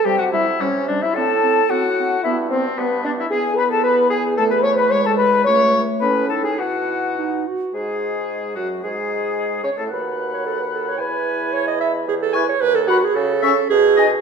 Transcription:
<<
  \new Staff \with { instrumentName = "Flute" } { \time 2/4 \key c \lydian \tempo 4 = 110 g''16 fis''16 e''8 cis''8 d''16 e''16 | a''4 fis''4 | e''8 c''8 b'8 d''16 e''16 | \key e \major gis''8 b''16 a''16 b''8 gis''8 |
a''16 b''16 cis'''16 b''16 cis'''16 a''16 b''8 | cis'''8. r16 b''8 a''16 gis''16 | fis''4. r8 | gis'4. fis'8 |
gis'4. cis''16 a'16 | b''2 | b''2 | r8 cis'''16 r8. b''16 r16 |
r8 cis'''16 r8. gis''16 r16 | }
  \new Staff \with { instrumentName = "Oboe" } { \time 2/4 \key c \lydian g'16 fis'16 e'8 cis'8 d'16 e'16 | a'4 fis'4 | e'8 c'8 b8 d'16 e'16 | \key e \major gis'8 b'16 a'16 b'8 gis'8 |
a'16 b'16 cis''16 b'16 cis''16 a'16 b'8 | cis''8. r16 b'8 a'16 gis'16 | fis'4. r8 | gis'4. fis'8 |
gis'4. cis''16 a'16 | fis''2 | gis''2 | r8 gis''16 r8. fis''16 r16 |
r8 e''16 r8. dis''16 r16 | }
  \new Staff \with { instrumentName = "Clarinet" } { \time 2/4 \key c \lydian g8 g8 g8 g8 | c'8 c'8 c'8 c'8 | b8 b8 b8 b8 | \key e \major b2 |
a4 gis4 | a4 cis'8 dis'8 | e'4 dis'8 fis'8 | gis'4. fis'8 |
gis'4. cis''16 a'16 | b'8. cis''16 a'16 b'16 a'16 cis''16 | b'4 cis''16 dis''16 e''8 | gis'16 a'16 b'16 cis''16 b'16 a'16 fis'16 gis'16 |
a'4 gis'8. r16 | }
  \new Staff \with { instrumentName = "French horn" } { \time 2/4 \key c \lydian g'16 fis'16 e'8 cis'8 d'16 e'16 | a'4 fis'4 | e'8 c'8 b8 d'16 e'16 | \key e \major gis'8 b'16 a'16 b'8 gis'8 |
a'16 b'16 cis''16 b'16 cis''16 a'16 b'8 | cis''8. r16 b'8 a'16 gis'16 | fis'4. r8 | gis4. fis8 |
gis4. cis'16 a16 | fis'2 | e'2 | r8 e'16 r8. fis'16 r16 |
r8 cis'16 r8. dis'16 r16 | }
  \new Staff \with { instrumentName = "Bassoon" } { \clef bass \time 2/4 \key c \lydian c4 c4 | a,4 a,4 | g,4 g,4 | \key e \major e,2~ |
e,2 | cis,4 a,4 | b,4. r8 | gis,4. fis,8 |
gis,4. cis16 a,16 | dis,2 | e,2 | e,4 dis,4 |
cis4 b,4 | }
>>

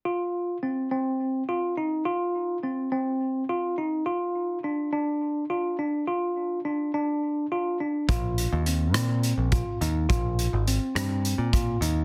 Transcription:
<<
  \new Staff \with { instrumentName = "Tine electric piano" } { \time 7/8 \key c \minor \tempo 4 = 104 f'4 c'8 c'4 f'8 ees'8 | f'4 c'8 c'4 f'8 ees'8 | f'4 d'8 d'4 f'8 d'8 | f'4 d'8 d'4 f'8 d'8 |
f'4 c'8 c'4 f'8 ees'8 | f'4 c'8 c'4 f'8 ees'8 | }
  \new Staff \with { instrumentName = "Picked electric bass" } { \clef bass \time 7/8 \key c \minor r2. r8 | r2. r8 | r2. r8 | r2. r8 |
bes,,8. ees,8. bes,8. bes,,8 r16 ees,8 | bes,,8. aes,,8 r16 g,8. bes,8. ees,8 | }
  \new DrumStaff \with { instrumentName = "Drums" } \drummode { \time 7/8 r4. r4 r4 | r4. r4 r4 | r4. r4 r4 | r4. r4 r4 |
<hh bd>8 hh8 hh8 <hh ss>8 hh8 <hh bd>8 hh8 | <hh bd>8 hh8 hh8 <hh ss>8 hh8 <hh bd>8 hh8 | }
>>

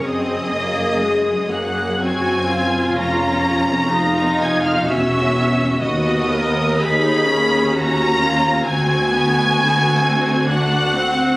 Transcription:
<<
  \new Staff \with { instrumentName = "Violin section" } { \time 3/4 \key gis \dorian \tempo 4 = 63 dis'''4. fis'''8 gis'''4 | ais'''4. gis'''16 eis'''16 e'''4 | dis'''4 b'''4 ais'''4 | gis'''2 fis'''4 | }
  \new Staff \with { instrumentName = "Violin section" } { \time 3/4 \key gis \dorian dis''4. fis''8 gis''4 | ais''4. gis''16 eis''16 e''4 | dis''4 b''4 ais''4 | gis''2 fis''4 | }
  \new Staff \with { instrumentName = "Viola section" } { \time 3/4 \key gis \dorian << { gis'2 fis'8 eis'8~ | eis'4 eis'4 fis'4 | fis'8 ais'8 gis'4 fis'8 eis'8 | fis'2. | } \\ { bis8 ais8 gis8 ais8 bis4 | cis'4 dis'4 cis'4 | b4 dis'8 cis'4. | c'8 b8 b8 c'8 d'8 c'8 | } >> }
  \new Staff \with { instrumentName = "Cello section" } { \clef bass \time 3/4 \key gis \dorian fis,2. | eis,2 e,4 | dis,2. | d,2. | }
  \new Staff \with { instrumentName = "Double bass section" } { \clef bass \time 3/4 \key gis \dorian fis,,2. | eis,,2 e,,4 | dis,2. | d,2. | }
>>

